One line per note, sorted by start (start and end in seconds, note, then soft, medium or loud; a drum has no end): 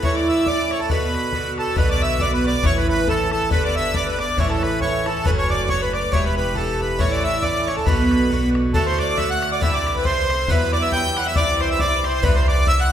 0.00 0.45 A2 medium
0.00 0.46 E3 medium
0.00 0.80 A4 medium
0.00 0.89 B4 medium
0.00 0.21 C#5 medium
0.00 0.16 C#5 medium
0.00 bodhran medium
0.04 0.47 E4 medium
0.14 0.46 D5 medium
0.14 0.28 D5 medium
0.28 2.00 E5 medium
0.28 0.47 E5 medium
0.46 0.90 A2 medium
0.46 0.90 E3 medium
0.46 0.91 C#4 medium
0.46 0.91 E4 medium
0.46 0.72 D5 medium
0.46 0.77 D5 medium
0.46 0.72 D5 loud
0.46 bodhran medium
0.70 0.81 C#5 medium
0.70 1.95 C#5 medium
0.70 bodhran medium
0.80 0.90 A4 medium
0.80 0.91 A4 medium
0.80 1.57 A4 medium
0.80 bodhran soft
0.90 1.32 B2 medium
0.90 1.34 D3 medium
0.90 1.34 B3 medium
0.90 1.34 F#4 medium
0.90 1.77 B4 medium
0.90 1.57 B4 medium
0.90 1.54 B4 medium
0.90 bodhran medium
1.15 bodhran medium
1.32 1.75 B2 medium
1.32 1.76 D3 medium
1.32 1.77 B3 soft
1.32 bodhran medium
1.37 1.77 F#4 medium
1.58 1.78 A4 medium
1.58 3.07 A4 medium
1.58 1.76 A4 medium
1.58 bodhran medium
1.67 bodhran soft
1.76 2.62 B1 medium
1.76 2.18 B2 medium
1.76 2.19 D3 medium
1.76 2.20 B3 medium
1.76 2.21 F#4 medium
1.76 1.89 B4 medium
1.76 2.32 B4 loud
1.76 1.90 B4 loud
1.76 bodhran loud
1.89 2.20 D5 medium
1.89 2.03 D5 medium
1.89 2.02 D5 medium
2.00 3.73 E5 loud
2.00 2.19 E5 medium
2.00 2.21 E5 loud
2.19 2.44 B2 medium
2.19 2.45 D3 medium
2.19 2.45 B3 medium
2.19 2.43 F#4 medium
2.19 2.34 D5 medium
2.19 2.44 D5 medium
2.19 2.32 D5 loud
2.19 bodhran medium
2.32 2.76 B4 medium
2.32 2.46 B4 medium
2.44 2.63 D3 soft
2.44 2.64 B3 soft
2.44 2.63 F#4 soft
2.44 2.62 D5 medium
2.44 2.70 D5 medium
2.44 2.65 D5 loud
2.54 bodhran soft
2.63 3.49 A1 medium
2.63 3.06 A2 medium
2.63 3.07 E3 medium
2.63 3.07 C#4 medium
2.63 3.08 E4 medium
2.63 2.75 C#5 medium
2.63 3.69 C#5 medium
2.63 2.77 C#5 loud
2.63 bodhran loud
2.76 2.88 B4 medium
2.76 2.87 B4 medium
2.76 2.88 B4 medium
2.88 3.09 B4 medium
2.88 3.50 B4 medium
2.88 3.08 B4 loud
3.07 3.50 A2 soft
3.07 3.51 E3 medium
3.07 3.51 C#4 medium
3.07 3.52 E4 medium
3.07 3.31 A4 medium
3.07 3.30 A4 medium
3.07 bodhran medium
3.31 4.49 A4 medium
3.31 3.49 A4 medium
3.31 3.50 A4 medium
3.31 bodhran medium
3.42 bodhran soft
3.50 4.36 G1 medium
3.50 3.93 G2 medium
3.50 3.94 D3 medium
3.50 3.95 B3 medium
3.50 3.95 D4 medium
3.50 4.06 B4 medium
3.50 3.62 B4 medium
3.50 3.64 B4 loud
3.50 bodhran medium
3.62 3.76 D5 medium
3.62 3.94 D5 medium
3.62 3.75 D5 medium
3.75 3.95 E5 medium
3.75 5.47 E5 medium
3.75 3.95 E5 loud
3.94 4.19 G2 medium
3.94 4.19 D3 medium
3.94 4.19 B3 medium
3.94 4.18 D4 medium
3.94 4.07 D5 loud
3.94 4.18 D5 medium
3.94 4.07 D5 loud
3.94 bodhran medium
4.06 4.17 B4 medium
4.06 4.62 B4 medium
4.06 4.19 B4 medium
4.18 4.38 D3 soft
4.18 4.39 B3 soft
4.18 4.38 D4 soft
4.18 4.39 D5 medium
4.18 4.43 D5 medium
4.18 4.39 D5 medium
4.18 bodhran medium
4.29 bodhran soft
4.37 5.23 A1 medium
4.37 4.80 A2 medium
4.37 4.81 E3 medium
4.37 4.82 C#4 medium
4.37 4.82 E4 medium
4.37 4.81 C#5 medium
4.37 4.52 C#5 medium
4.37 4.48 C#5 loud
4.37 bodhran medium
4.47 5.05 A4 medium
4.47 4.63 A4 medium
4.47 4.64 A4 medium
4.47 4.50 B4 medium
4.62 4.80 B4 medium
4.62 5.25 B4 medium
4.62 4.81 B4 medium
4.62 bodhran medium
4.81 5.06 A2 soft
4.81 5.06 E3 medium
4.81 5.06 C#4 medium
4.81 5.04 E4 medium
4.81 5.06 C#5 medium
4.81 5.07 C#5 medium
4.81 5.37 C#5 medium
4.81 bodhran medium
5.05 5.26 E3 soft
5.05 5.25 C#4 soft
5.05 5.25 E4 soft
5.05 5.27 A4 medium
5.05 5.26 A4 medium
5.05 bodhran medium
5.16 bodhran soft
5.25 6.10 F#1 medium
5.25 5.67 A2 medium
5.25 5.69 F#3 medium
5.25 5.69 C#4 medium
5.25 5.70 F#4 medium
5.25 5.31 B4 loud
5.25 5.81 B4 medium
5.25 5.40 B4 medium
5.25 bodhran loud
5.37 5.56 C#5 medium
5.37 5.50 C#5 medium
5.50 5.69 D5 medium
5.50 5.75 D5 medium
5.50 5.68 D5 medium
5.68 6.11 A2 medium
5.68 6.13 F#3 medium
5.68 6.13 C#4 medium
5.68 6.14 F#4 medium
5.68 5.99 C#5 medium
5.68 5.81 C#5 loud
5.68 5.83 C#5 medium
5.68 bodhran medium
5.81 6.36 B4 medium
5.81 5.92 B4 medium
5.81 5.95 B4 medium
5.93 6.18 D5 medium
5.93 6.13 D5 medium
5.93 6.12 D5 medium
5.93 bodhran medium
6.03 bodhran soft
6.12 6.97 E1 medium
6.12 6.54 G2 medium
6.12 6.55 E3 medium
6.12 6.56 B3 medium
6.12 6.57 G4 medium
6.12 6.99 C#5 medium
6.12 6.25 C#5 medium
6.12 6.26 C#5 medium
6.12 bodhran medium
6.25 6.36 B4 medium
6.25 6.35 B4 medium
6.37 6.80 B4 medium
6.37 6.56 B4 medium
6.37 6.58 B4 medium
6.55 6.98 G2 medium
6.55 6.99 E3 medium
6.55 7.00 B3 medium
6.55 7.00 G4 medium
6.55 7.76 A4 medium
6.55 6.81 A4 medium
6.55 bodhran medium
6.80 7.00 B4 medium
6.80 7.86 B4 medium
6.80 7.00 B4 medium
6.90 bodhran soft
6.98 7.85 A1 medium
6.98 7.41 A2 medium
6.98 7.43 E3 medium
6.98 7.44 C#4 medium
6.98 7.44 E4 medium
6.98 7.11 C#5 medium
6.98 7.18 C#5 medium
6.98 7.12 C#5 loud
6.98 7.06 D5 medium
6.98 bodhran medium
7.12 7.23 D5 medium
7.12 7.26 D5 medium
7.12 7.43 D5 medium
7.24 7.43 E5 loud
7.24 7.44 E5 medium
7.42 7.67 A2 medium
7.42 7.68 E3 medium
7.42 7.68 C#4 medium
7.42 7.66 E4 medium
7.42 7.68 D5 loud
7.42 7.69 D5 medium
7.42 7.73 D5 medium
7.42 bodhran medium
7.66 7.87 E3 soft
7.66 7.87 C#4 soft
7.66 7.86 E4 soft
7.66 7.76 C#5 medium
7.66 8.92 C#5 medium
7.66 7.80 C#5 medium
7.66 bodhran medium
7.76 7.87 A4 medium
7.76 8.74 A4 medium
7.76 7.87 A4 medium
7.76 bodhran soft
7.85 8.72 B1 medium
7.85 8.29 B2 medium
7.85 8.31 D3 medium
7.85 8.31 B3 medium
7.85 8.31 F#4 medium
7.85 8.50 B4 medium
7.85 8.92 B4 medium
7.85 8.51 B4 medium
7.85 bodhran loud
8.11 bodhran medium
8.30 8.74 B2 medium
8.30 8.73 D3 medium
8.30 8.75 B3 medium
8.30 8.75 F#4 medium
8.30 bodhran medium
8.55 bodhran medium
8.65 bodhran soft
8.74 9.59 D2 medium
8.74 9.15 A2 medium
8.74 9.16 D3 medium
8.74 9.17 A3 medium
8.74 9.18 F#4 medium
8.74 8.87 A4 medium
8.74 10.94 A4 medium
8.74 8.89 A4 medium
8.74 bodhran medium
8.86 10.02 C5 medium
8.86 8.99 C5 medium
8.86 9.00 C5 medium
8.98 9.19 D5 medium
8.98 9.18 D5 medium
8.98 9.51 D5 medium
8.98 bodhran medium
9.09 bodhran soft
9.16 9.60 A2 medium
9.16 9.60 D3 medium
9.16 9.61 A3 medium
9.16 9.62 F#4 medium
9.16 9.30 E5 loud
9.16 9.61 E5 medium
9.16 9.31 E5 medium
9.16 bodhran medium
9.30 9.54 F#5 medium
9.30 9.50 F#5 medium
9.42 bodhran medium
9.52 10.73 D5 medium
9.52 9.62 D5 medium
9.61 10.47 C2 medium
9.61 10.03 G2 medium
9.61 10.04 D3 medium
9.61 10.05 C4 medium
9.61 10.07 E4 loud
9.61 10.82 E5 loud
9.61 9.74 E5 medium
9.61 9.76 E5 loud
9.61 bodhran medium
9.74 9.96 D5 medium
9.87 bodhran medium
9.95 10.05 B4 medium
9.95 10.12 B4 medium
9.95 10.07 B4 medium
9.95 bodhran soft
10.04 10.29 G2 medium
10.04 10.30 D3 medium
10.04 10.30 C4 medium
10.04 10.28 E4 medium
10.04 10.50 C5 loud
10.04 10.50 C5 medium
10.04 10.55 C5 medium
10.04 bodhran medium
10.29 10.50 D3 soft
10.29 10.49 C4 soft
10.29 10.48 E4 soft
10.29 bodhran medium
10.48 11.34 E2 loud
10.48 10.90 G2 medium
10.48 10.91 F#3 medium
10.48 10.93 B3 loud
10.48 10.94 E4 medium
10.48 10.74 B4 medium
10.48 10.72 B4 medium
10.48 11.66 B4 loud
10.48 bodhran medium
10.73 10.83 D5 loud
10.73 11.35 D5 medium
10.73 bodhran medium
10.82 10.93 E5 medium
10.82 10.92 E5 medium
10.82 11.26 E5 medium
10.82 bodhran soft
10.92 11.17 G2 medium
10.92 11.17 F#3 medium
10.92 11.17 B3 medium
10.92 11.15 E4 medium
10.92 11.18 G5 loud
10.92 bodhran medium
11.16 11.36 F#3 soft
11.16 11.37 B3 soft
11.16 11.36 E4 soft
11.16 11.25 F#5 loud
11.16 11.27 F#5 medium
11.16 bodhran medium
11.26 11.30 E5 loud
11.26 11.69 E5 medium
11.26 11.36 E5 medium
11.36 12.22 C2 medium
11.36 11.78 G2 medium
11.36 11.79 E3 medium
11.36 11.80 C4 medium
11.36 11.81 E4 medium
11.36 11.62 D5 medium
11.36 11.79 D5 medium
11.36 11.61 D5 loud
11.36 bodhran medium
11.60 12.03 C5 medium
11.60 11.71 C5 medium
11.60 11.69 C5 medium
11.60 bodhran medium
11.69 11.79 E5 medium
11.69 12.67 E5 medium
11.69 11.80 E5 loud
11.69 bodhran soft
11.79 12.04 G2 medium
11.79 12.05 E3 soft
11.79 12.04 C4 medium
11.79 12.03 E4 medium
11.79 12.06 D5 medium
11.79 12.48 D5 medium
11.79 12.05 D5 loud
11.79 bodhran medium
12.04 12.23 E3 soft
12.04 12.23 C4 soft
12.04 12.23 E4 soft
12.04 12.29 C5 medium
12.04 12.24 C5 medium
12.04 12.09 C5 medium
12.04 bodhran medium
12.10 12.13 C5 medium
12.14 12.23 C5 medium
12.23 12.92 C2 medium
12.23 12.65 G2 medium
12.23 12.66 D3 medium
12.23 12.67 C4 medium
12.23 12.68 E4 medium
12.23 12.36 B4 loud
12.23 12.42 B4 medium
12.23 12.37 B4 medium
12.23 bodhran medium
12.35 12.47 C5 medium
12.35 12.49 C5 medium
12.35 12.92 C5 medium
12.48 12.66 D5 medium
12.48 12.92 D5 medium
12.48 12.68 D5 loud
12.48 bodhran medium
12.58 bodhran soft
12.66 12.91 G2 medium
12.66 12.92 D3 medium
12.66 12.91 C4 medium
12.66 12.89 E4 medium
12.66 12.81 E5 medium
12.66 12.80 E5 loud
12.66 bodhran medium
12.79 12.92 F#5 medium